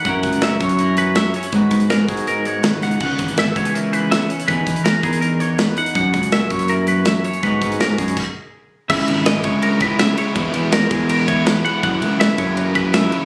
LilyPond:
<<
  \new Staff \with { instrumentName = "Clean electric guitar" } { \time 4/4 \key cis \dorian \tempo 4 = 163 fis''4 e''8 cis''8 ais'8 b'8 e''8 cis''8 | b'4 ais'8 gis'8 ais'8 cis''8 b'8 fis''8 | fis''4 e''8 cis''8 ais'8 b'8 e''8 cis''8 | b'4 ais'8 gis'8 ais'8 cis''8 b'8 fis''8 |
fis''4 e''8 cis''8 ais'8 b'8 e''8 cis''8 | b'4 ais'8 gis'8 r2 | e''4 dis''8 cis''8 ais'8 b'8 e''8 cis''8 | b'4 ais'8 gis'8 ais'8 cis''8 b'8 fis''8 |
fis''4 e''8 cis''8 ais'8 b'8 e''8 cis''8 | }
  \new Staff \with { instrumentName = "Clean electric guitar" } { \time 4/4 \key cis \dorian << { <fis cis' e' ais'>4 cis'8 cis''8 e'4 cis'8 cis'16 e'16 | <gis b dis' fis'>4 b8 fis'8 dis'4 b8 dis'8 | r4 b8 fis'16 gis'16 e'4 b8 cis'16 e'16 | <e b dis' gis'>4 b8 ais'8 dis'4 b8 dis'8 |
r4 ais8 cis''8 e'2 | <gis b dis' fis'>2 r2 | r1 | r1 |
r1 | } \\ { fis,8 fis2 fis4. | gis,8 gis2 gis4. | cis8 e2 e4. | e,8 e2 e4. |
fis,8 fis2 fis8 e,8 fis,8 | gis,8 gis8 gis,8 fis,8 r2 | r1 | r1 |
r1 | } >> }
  \new Staff \with { instrumentName = "Overdriven electric guitar" } { \time 4/4 \key cis \dorian r1 | r1 | r1 | r1 |
r1 | r1 | <cis gis cis' e'>8 <gis cis' e'>8 <cis gis cis' e'>4. <gis cis' e'>8 <cis gis cis' e'>8 <gis cis' e'>8 | <e gis b e'>8 <gis b e'>8 <e gis b e'>4. <gis b e'>8 <e gis b e'>8 <gis b e'>8 |
<fis, cis e ais e'>8 <e ais e'>8 <fis, cis e ais e'>4. <e ais e'>8 <cis e ais e'>8 <e ais e'>8 | }
  \new Staff \with { instrumentName = "Fingered electric bass" } { \clef bass \time 4/4 \key cis \dorian fis,8 cis,4 fis,2 r8 | gis,8 gis,4 gis,4. dis,8 cis,8 | cis,8 gis,,4 cis,2 r8 | e,8 e,4 e,2 r8 |
fis,8 cis,4 fis,2 r8 | gis,8 gis,4 fis,8 r2 | cis,8 gis,,4 cis,2 r8 | e,8 e,4 e,2 r8 |
fis,8 cis,4 fis,2 r8 | }
  \new DrumStaff \with { instrumentName = "Drums" } \drummode { \time 4/4 <hh bd>8 <hh bd>16 hh16 <hh sn>8 <hh bd>16 hh16 hh8 hh8 <hh sn>8 hh16 hh16 | <hh bd>8 <hh bd>16 hh16 <hh sn>8 <hh bd>16 hh16 hh8 hh8 <hh sn>8 <hh sn>16 hh16 | <cymc bd>8 <hh bd>16 hh16 <hh sn>8 <hh bd>16 hh16 hh8 hh8 <hh sn>8 hh16 hh16 | <hh bd>8 <hh bd>16 hh16 <hh sn>8 <hh bd>16 hh16 hh8 hh8 <hh sn>8 hh16 hh16 |
<hh bd>8 <hh bd>16 hh16 <hh sn>8 <hh bd>16 hh16 hh8 hh8 <hh sn>8 hh16 hh16 | <hh bd>8 <hh bd>16 hh16 <hh sn>8 <hh bd>16 hh16 <cymc bd>4 r4 | <cymc bd>8 cymr8 <cymr sn>8 <bd cymr>8 cymr8 <bd cymr>8 <cymr sn>8 cymr8 | <bd cymr>8 cymr8 <cymr sn>8 <bd cymr>8 cymr8 <bd cymr>8 <cymr sn>8 cymr8 |
<bd cymr>8 cymr8 <cymr sn>8 <bd cymr>8 cymr8 <bd cymr>8 <cymr sn>8 cymr8 | }
>>